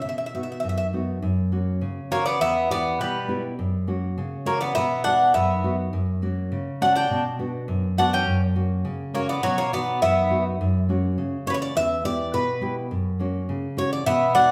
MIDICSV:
0, 0, Header, 1, 4, 480
1, 0, Start_track
1, 0, Tempo, 587084
1, 46, Time_signature, 2, 2, 24, 8
1, 7245, Tempo, 578592
1, 11935, End_track
2, 0, Start_track
2, 0, Title_t, "Bouzouki"
2, 0, Program_c, 0, 25
2, 13, Note_on_c, 0, 76, 45
2, 62, Note_off_c, 0, 76, 0
2, 72, Note_on_c, 0, 76, 56
2, 137, Note_off_c, 0, 76, 0
2, 147, Note_on_c, 0, 76, 50
2, 205, Note_off_c, 0, 76, 0
2, 215, Note_on_c, 0, 76, 55
2, 274, Note_off_c, 0, 76, 0
2, 284, Note_on_c, 0, 76, 44
2, 343, Note_off_c, 0, 76, 0
2, 353, Note_on_c, 0, 76, 53
2, 414, Note_off_c, 0, 76, 0
2, 424, Note_on_c, 0, 76, 43
2, 480, Note_off_c, 0, 76, 0
2, 490, Note_on_c, 0, 76, 56
2, 556, Note_off_c, 0, 76, 0
2, 566, Note_on_c, 0, 76, 51
2, 624, Note_off_c, 0, 76, 0
2, 634, Note_on_c, 0, 76, 63
2, 703, Note_off_c, 0, 76, 0
2, 1731, Note_on_c, 0, 73, 83
2, 1841, Note_off_c, 0, 73, 0
2, 1845, Note_on_c, 0, 74, 84
2, 1960, Note_off_c, 0, 74, 0
2, 1972, Note_on_c, 0, 76, 103
2, 2215, Note_off_c, 0, 76, 0
2, 2218, Note_on_c, 0, 74, 91
2, 2460, Note_on_c, 0, 71, 72
2, 2463, Note_off_c, 0, 74, 0
2, 2792, Note_off_c, 0, 71, 0
2, 3650, Note_on_c, 0, 73, 74
2, 3763, Note_off_c, 0, 73, 0
2, 3766, Note_on_c, 0, 74, 72
2, 3880, Note_off_c, 0, 74, 0
2, 3883, Note_on_c, 0, 76, 97
2, 4111, Note_off_c, 0, 76, 0
2, 4121, Note_on_c, 0, 78, 87
2, 4364, Note_off_c, 0, 78, 0
2, 4367, Note_on_c, 0, 76, 81
2, 4705, Note_off_c, 0, 76, 0
2, 5576, Note_on_c, 0, 78, 84
2, 5686, Note_off_c, 0, 78, 0
2, 5693, Note_on_c, 0, 79, 82
2, 5915, Note_off_c, 0, 79, 0
2, 6527, Note_on_c, 0, 78, 85
2, 6650, Note_off_c, 0, 78, 0
2, 6653, Note_on_c, 0, 79, 89
2, 6873, Note_off_c, 0, 79, 0
2, 7484, Note_on_c, 0, 73, 74
2, 7600, Note_off_c, 0, 73, 0
2, 7603, Note_on_c, 0, 74, 75
2, 7715, Note_off_c, 0, 74, 0
2, 7719, Note_on_c, 0, 73, 90
2, 7831, Note_off_c, 0, 73, 0
2, 7841, Note_on_c, 0, 73, 79
2, 7956, Note_off_c, 0, 73, 0
2, 7973, Note_on_c, 0, 74, 89
2, 8195, Note_off_c, 0, 74, 0
2, 8207, Note_on_c, 0, 76, 90
2, 8544, Note_off_c, 0, 76, 0
2, 9411, Note_on_c, 0, 73, 90
2, 9434, Note_on_c, 0, 71, 69
2, 9442, Note_off_c, 0, 73, 0
2, 9468, Note_off_c, 0, 71, 0
2, 9470, Note_on_c, 0, 73, 80
2, 9529, Note_off_c, 0, 73, 0
2, 9533, Note_on_c, 0, 74, 79
2, 9652, Note_off_c, 0, 74, 0
2, 9656, Note_on_c, 0, 76, 105
2, 9889, Note_off_c, 0, 76, 0
2, 9892, Note_on_c, 0, 74, 88
2, 10130, Note_on_c, 0, 71, 73
2, 10139, Note_off_c, 0, 74, 0
2, 10464, Note_off_c, 0, 71, 0
2, 11329, Note_on_c, 0, 73, 76
2, 11439, Note_off_c, 0, 73, 0
2, 11448, Note_on_c, 0, 74, 74
2, 11558, Note_off_c, 0, 74, 0
2, 11561, Note_on_c, 0, 76, 102
2, 11784, Note_off_c, 0, 76, 0
2, 11796, Note_on_c, 0, 78, 97
2, 11935, Note_off_c, 0, 78, 0
2, 11935, End_track
3, 0, Start_track
3, 0, Title_t, "Nylon-string guitar"
3, 0, Program_c, 1, 24
3, 38, Note_on_c, 1, 47, 66
3, 282, Note_on_c, 1, 59, 45
3, 286, Note_on_c, 1, 63, 42
3, 288, Note_on_c, 1, 66, 49
3, 509, Note_off_c, 1, 47, 0
3, 523, Note_on_c, 1, 42, 62
3, 669, Note_off_c, 1, 59, 0
3, 671, Note_off_c, 1, 63, 0
3, 673, Note_off_c, 1, 66, 0
3, 760, Note_on_c, 1, 59, 43
3, 763, Note_on_c, 1, 63, 39
3, 768, Note_on_c, 1, 66, 52
3, 956, Note_off_c, 1, 59, 0
3, 957, Note_off_c, 1, 63, 0
3, 961, Note_off_c, 1, 66, 0
3, 992, Note_off_c, 1, 42, 0
3, 1001, Note_on_c, 1, 42, 70
3, 1242, Note_on_c, 1, 58, 49
3, 1245, Note_on_c, 1, 61, 43
3, 1248, Note_on_c, 1, 66, 49
3, 1472, Note_off_c, 1, 42, 0
3, 1483, Note_on_c, 1, 49, 61
3, 1630, Note_off_c, 1, 58, 0
3, 1632, Note_off_c, 1, 61, 0
3, 1633, Note_off_c, 1, 66, 0
3, 1723, Note_on_c, 1, 58, 46
3, 1726, Note_on_c, 1, 61, 47
3, 1729, Note_on_c, 1, 66, 56
3, 1919, Note_off_c, 1, 58, 0
3, 1919, Note_off_c, 1, 61, 0
3, 1922, Note_off_c, 1, 66, 0
3, 1953, Note_off_c, 1, 49, 0
3, 1963, Note_on_c, 1, 40, 66
3, 2206, Note_on_c, 1, 59, 46
3, 2211, Note_on_c, 1, 64, 42
3, 2212, Note_on_c, 1, 67, 53
3, 2434, Note_off_c, 1, 40, 0
3, 2448, Note_on_c, 1, 47, 60
3, 2593, Note_off_c, 1, 59, 0
3, 2595, Note_off_c, 1, 64, 0
3, 2597, Note_off_c, 1, 67, 0
3, 2683, Note_on_c, 1, 59, 50
3, 2688, Note_on_c, 1, 64, 45
3, 2691, Note_on_c, 1, 67, 53
3, 2879, Note_off_c, 1, 59, 0
3, 2881, Note_off_c, 1, 64, 0
3, 2884, Note_off_c, 1, 67, 0
3, 2916, Note_off_c, 1, 47, 0
3, 2933, Note_on_c, 1, 42, 67
3, 3167, Note_on_c, 1, 58, 47
3, 3171, Note_on_c, 1, 61, 42
3, 3172, Note_on_c, 1, 66, 51
3, 3399, Note_off_c, 1, 42, 0
3, 3415, Note_on_c, 1, 49, 62
3, 3554, Note_off_c, 1, 58, 0
3, 3556, Note_off_c, 1, 61, 0
3, 3557, Note_off_c, 1, 66, 0
3, 3642, Note_on_c, 1, 58, 48
3, 3646, Note_on_c, 1, 61, 46
3, 3649, Note_on_c, 1, 66, 53
3, 3839, Note_off_c, 1, 58, 0
3, 3842, Note_off_c, 1, 61, 0
3, 3842, Note_off_c, 1, 66, 0
3, 3880, Note_off_c, 1, 49, 0
3, 3894, Note_on_c, 1, 47, 63
3, 4129, Note_on_c, 1, 59, 47
3, 4131, Note_on_c, 1, 63, 42
3, 4136, Note_on_c, 1, 66, 53
3, 4359, Note_off_c, 1, 47, 0
3, 4371, Note_on_c, 1, 42, 65
3, 4515, Note_off_c, 1, 59, 0
3, 4515, Note_off_c, 1, 63, 0
3, 4519, Note_off_c, 1, 66, 0
3, 4605, Note_on_c, 1, 59, 47
3, 4609, Note_on_c, 1, 63, 41
3, 4612, Note_on_c, 1, 66, 53
3, 4801, Note_off_c, 1, 59, 0
3, 4803, Note_off_c, 1, 66, 0
3, 4804, Note_off_c, 1, 63, 0
3, 4838, Note_off_c, 1, 42, 0
3, 4848, Note_on_c, 1, 42, 66
3, 5085, Note_on_c, 1, 58, 44
3, 5089, Note_on_c, 1, 61, 45
3, 5093, Note_on_c, 1, 66, 54
3, 5315, Note_off_c, 1, 42, 0
3, 5328, Note_on_c, 1, 49, 63
3, 5471, Note_off_c, 1, 58, 0
3, 5474, Note_off_c, 1, 66, 0
3, 5475, Note_off_c, 1, 61, 0
3, 5569, Note_on_c, 1, 58, 48
3, 5573, Note_on_c, 1, 61, 43
3, 5576, Note_on_c, 1, 66, 49
3, 5761, Note_off_c, 1, 58, 0
3, 5764, Note_off_c, 1, 61, 0
3, 5765, Note_off_c, 1, 66, 0
3, 5795, Note_off_c, 1, 49, 0
3, 5808, Note_on_c, 1, 47, 67
3, 6042, Note_on_c, 1, 59, 49
3, 6047, Note_on_c, 1, 62, 41
3, 6047, Note_on_c, 1, 66, 52
3, 6273, Note_off_c, 1, 47, 0
3, 6279, Note_on_c, 1, 42, 68
3, 6428, Note_off_c, 1, 59, 0
3, 6429, Note_off_c, 1, 62, 0
3, 6431, Note_off_c, 1, 66, 0
3, 6520, Note_on_c, 1, 59, 47
3, 6525, Note_on_c, 1, 62, 46
3, 6529, Note_on_c, 1, 66, 57
3, 6715, Note_off_c, 1, 59, 0
3, 6716, Note_off_c, 1, 62, 0
3, 6720, Note_off_c, 1, 66, 0
3, 6747, Note_off_c, 1, 42, 0
3, 6757, Note_on_c, 1, 42, 70
3, 6994, Note_on_c, 1, 58, 50
3, 6998, Note_on_c, 1, 61, 45
3, 7000, Note_on_c, 1, 66, 57
3, 7224, Note_off_c, 1, 42, 0
3, 7233, Note_on_c, 1, 49, 62
3, 7382, Note_off_c, 1, 58, 0
3, 7383, Note_off_c, 1, 61, 0
3, 7386, Note_off_c, 1, 66, 0
3, 7473, Note_on_c, 1, 58, 47
3, 7476, Note_on_c, 1, 61, 42
3, 7481, Note_on_c, 1, 66, 58
3, 7671, Note_off_c, 1, 58, 0
3, 7673, Note_off_c, 1, 61, 0
3, 7675, Note_off_c, 1, 66, 0
3, 7707, Note_off_c, 1, 49, 0
3, 7721, Note_on_c, 1, 47, 70
3, 7959, Note_on_c, 1, 59, 45
3, 7966, Note_on_c, 1, 66, 50
3, 7967, Note_on_c, 1, 63, 45
3, 8192, Note_off_c, 1, 47, 0
3, 8202, Note_on_c, 1, 42, 62
3, 8349, Note_off_c, 1, 59, 0
3, 8351, Note_off_c, 1, 63, 0
3, 8352, Note_off_c, 1, 66, 0
3, 8440, Note_on_c, 1, 59, 48
3, 8445, Note_on_c, 1, 63, 45
3, 8446, Note_on_c, 1, 66, 52
3, 8637, Note_off_c, 1, 59, 0
3, 8639, Note_off_c, 1, 63, 0
3, 8640, Note_off_c, 1, 66, 0
3, 8672, Note_off_c, 1, 42, 0
3, 8694, Note_on_c, 1, 42, 72
3, 8926, Note_on_c, 1, 58, 46
3, 8930, Note_on_c, 1, 61, 46
3, 8935, Note_on_c, 1, 66, 50
3, 9159, Note_off_c, 1, 42, 0
3, 9167, Note_on_c, 1, 49, 62
3, 9312, Note_off_c, 1, 58, 0
3, 9315, Note_off_c, 1, 61, 0
3, 9318, Note_off_c, 1, 66, 0
3, 9405, Note_on_c, 1, 58, 50
3, 9412, Note_on_c, 1, 61, 44
3, 9415, Note_on_c, 1, 66, 54
3, 9600, Note_off_c, 1, 58, 0
3, 9604, Note_off_c, 1, 61, 0
3, 9606, Note_off_c, 1, 66, 0
3, 9635, Note_off_c, 1, 49, 0
3, 9645, Note_on_c, 1, 40, 71
3, 9881, Note_on_c, 1, 59, 45
3, 9887, Note_on_c, 1, 64, 42
3, 9889, Note_on_c, 1, 67, 52
3, 10113, Note_off_c, 1, 40, 0
3, 10125, Note_on_c, 1, 47, 70
3, 10268, Note_off_c, 1, 59, 0
3, 10272, Note_off_c, 1, 64, 0
3, 10273, Note_off_c, 1, 67, 0
3, 10356, Note_on_c, 1, 59, 46
3, 10361, Note_on_c, 1, 64, 44
3, 10365, Note_on_c, 1, 67, 52
3, 10553, Note_off_c, 1, 59, 0
3, 10557, Note_off_c, 1, 64, 0
3, 10558, Note_off_c, 1, 67, 0
3, 10592, Note_off_c, 1, 47, 0
3, 10604, Note_on_c, 1, 42, 68
3, 10839, Note_on_c, 1, 58, 49
3, 10845, Note_on_c, 1, 61, 42
3, 10849, Note_on_c, 1, 66, 57
3, 11070, Note_off_c, 1, 42, 0
3, 11085, Note_on_c, 1, 49, 63
3, 11225, Note_off_c, 1, 58, 0
3, 11228, Note_off_c, 1, 61, 0
3, 11231, Note_off_c, 1, 66, 0
3, 11316, Note_on_c, 1, 58, 51
3, 11321, Note_on_c, 1, 61, 43
3, 11324, Note_on_c, 1, 66, 53
3, 11511, Note_off_c, 1, 58, 0
3, 11514, Note_off_c, 1, 61, 0
3, 11515, Note_off_c, 1, 66, 0
3, 11549, Note_off_c, 1, 49, 0
3, 11561, Note_on_c, 1, 47, 69
3, 11792, Note_on_c, 1, 59, 48
3, 11796, Note_on_c, 1, 63, 44
3, 11800, Note_on_c, 1, 66, 53
3, 11935, Note_off_c, 1, 47, 0
3, 11935, Note_off_c, 1, 59, 0
3, 11935, Note_off_c, 1, 63, 0
3, 11935, Note_off_c, 1, 66, 0
3, 11935, End_track
4, 0, Start_track
4, 0, Title_t, "Bouzouki"
4, 0, Program_c, 2, 25
4, 1731, Note_on_c, 2, 58, 76
4, 1843, Note_off_c, 2, 58, 0
4, 1855, Note_on_c, 2, 59, 73
4, 1965, Note_off_c, 2, 59, 0
4, 1977, Note_on_c, 2, 59, 88
4, 2198, Note_off_c, 2, 59, 0
4, 2225, Note_on_c, 2, 59, 74
4, 2442, Note_off_c, 2, 59, 0
4, 2458, Note_on_c, 2, 55, 58
4, 2791, Note_off_c, 2, 55, 0
4, 3656, Note_on_c, 2, 58, 64
4, 3766, Note_off_c, 2, 58, 0
4, 3776, Note_on_c, 2, 59, 64
4, 3876, Note_off_c, 2, 59, 0
4, 3885, Note_on_c, 2, 59, 82
4, 4113, Note_off_c, 2, 59, 0
4, 4124, Note_on_c, 2, 62, 74
4, 4352, Note_off_c, 2, 62, 0
4, 4371, Note_on_c, 2, 59, 63
4, 4707, Note_off_c, 2, 59, 0
4, 5575, Note_on_c, 2, 62, 73
4, 5676, Note_off_c, 2, 62, 0
4, 5686, Note_on_c, 2, 62, 76
4, 5911, Note_off_c, 2, 62, 0
4, 6535, Note_on_c, 2, 62, 72
4, 6643, Note_off_c, 2, 62, 0
4, 6649, Note_on_c, 2, 61, 75
4, 6870, Note_off_c, 2, 61, 0
4, 7481, Note_on_c, 2, 58, 64
4, 7595, Note_off_c, 2, 58, 0
4, 7602, Note_on_c, 2, 59, 61
4, 7716, Note_off_c, 2, 59, 0
4, 7718, Note_on_c, 2, 54, 72
4, 7834, Note_off_c, 2, 54, 0
4, 7843, Note_on_c, 2, 58, 68
4, 7957, Note_off_c, 2, 58, 0
4, 7968, Note_on_c, 2, 59, 69
4, 8192, Note_off_c, 2, 59, 0
4, 8210, Note_on_c, 2, 59, 76
4, 8546, Note_off_c, 2, 59, 0
4, 11570, Note_on_c, 2, 59, 79
4, 11789, Note_off_c, 2, 59, 0
4, 11798, Note_on_c, 2, 62, 83
4, 11935, Note_off_c, 2, 62, 0
4, 11935, End_track
0, 0, End_of_file